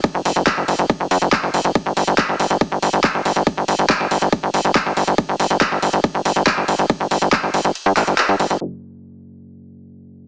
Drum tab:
RD |x-x-x-x-x-x-x-x-|x-x-x-x-x-x-x-x-|x-x-x-x-x-x-x-x-|x-x-x-x-x-x-x-x-|
HH |x-oxx-oxx-oxx-ox|x-oxx-oxx-oxx-ox|x-oxx-oxx-oxx-ox|x-oxx-oxx-oxx-ox|
CP |----x-------x---|----x-------x---|----x-------x---|----x-------x---|
BD |o---o---o---o---|o---o---o---o---|o---o---o---o---|o---o---o---o---|

RD |x-x-x-x-x-x-x-x-|----------------|
HH |x-oxx-oxx-oxx-ox|----------------|
CP |----x-----x-x---|----------------|
BD |o---o-----------|----------------|